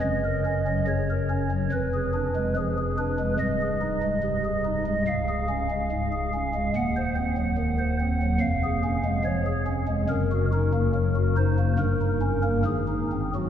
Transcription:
pipe organ
0.01 F#1 F#2 D#5
0.24 A#4
0.46 C#4
0.67 F#3
0.88 C#3 C#5
1.10 A#4
1.30 C#4
1.51 F#3
1.72 F1 F2 B4
1.93 G#4
2.14 D4
2.36 G#3
2.56 F3 G#4
2.78 G#4
2.98 D4 B4
3.19 G#3
3.39 C1 C2 D#5
3.61 G#4
3.82 D#4
4.03 G#3
4.23 C3
4.44 G#4
4.65 D#4
4.86 G#3
5.07 C#1 C#2 F5
5.28 G#4
5.49 C#4
5.71 G#3
5.92 G#2
6.12 G#4
6.34 C#4
6.54 G#3
6.75 D#1 D#2 F#5
6.97 C5
7.16 C4
7.37 F#3
7.58 D#3
7.79 C5
8.00 C4
8.22 F#3
8.40 F1 F2 F5
8.63 G#4
8.84 C#4
9.05 G#3
9.25 F3 C#5
9.46 G#4
9.67 C#4
9.88 G#3
10.09 F#1 F#2 A#4
10.31 F#4
10.52 D#4 A#4
10.74 A#3
10.94 F#3
11.15 F#4
11.37 D#4 C5
11.59 A#3
11.79 G1 G2 A#4
12.02 D#4
12.22 C#4
12.43 A#3 A#4
12.65 G#1 G#2 G#4
12.88 D#4
13.12 C4
13.34 F#3 F#4

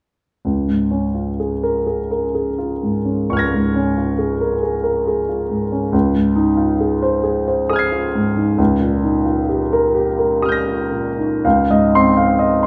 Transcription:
grand piano
0.45 C#2
0.68 G#2
0.91 C#4
1.15 F4
1.40 G#4
1.63 A#4
1.87 G#4
2.11 A#4
2.35 G#4
2.58 F4
2.83 G#2
3.05 C#4
3.30 C#2 C#6 F6
3.37 G#6 A#6
3.54 G#2
3.76 C#4
3.97 F4
4.19 G#4
4.41 A#4
4.63 G#4
4.84 A#4
5.07 G#4
5.29 F4
5.49 G#2
5.72 C#4
5.93 C#2
6.14 G#2
6.36 D#4
6.57 F4
6.80 G#4
7.02 C5
7.24 G#4
7.48 C5
7.69 G#4 D#6 F6
7.76 G#6 C7
7.92 F4
8.15 G#2
8.36 D#4
8.58 C#2
8.81 A#2
9.04 D#4
9.25 F4
9.49 G4
9.73 A#4
9.95 G4
10.19 A#4
10.42 G4 D#6 F6
10.49 G6 A#6
10.67 F4
10.92 A#2
11.19 D#4
11.45 C#2 F5
11.70 G#2 D#5
11.95 C4 C6
12.17 F5
12.39 D#5
12.63 C6

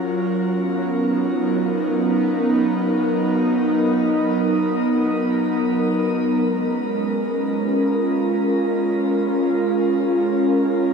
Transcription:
analog synth pad
Already playing: F#3 C#4 F4 A#4
0.53 B3
0.92 D#4
6.43 G#3
6.63 C#4
7.42 F4

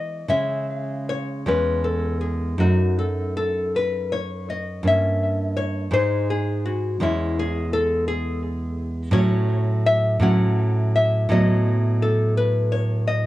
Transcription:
nylon-string guitar
Already playing: E3 G#3 B3 D#5
0.28 C#3 G#3 C#4 E5
1.09 C#5
1.46 E2 G#3 C#4 B4
1.84 A4
2.21 G#4
2.58 F#2 A3 D#4 F#4
2.98 A4
3.37 A4
3.76 B4
4.12 C#5
4.50 D#5
4.83 G2 A#3 C#4
4.87 E5
5.57 C#5
5.91 G#2 G#3 D#4 C5
6.30 G#4
6.65 F#4
7.00 E2 G#3 C#4 E4
7.39 G#4
7.73 A4
8.08 G#4
9.11 A2 F#3 C#4 C#5
9.87 E5
10.20 A2 F#3 C#4 F#5
10.96 E5
11.29 A2 F#3 B3 D#5
12.02 A4
12.37 B4
12.72 C#5
13.07 D#5

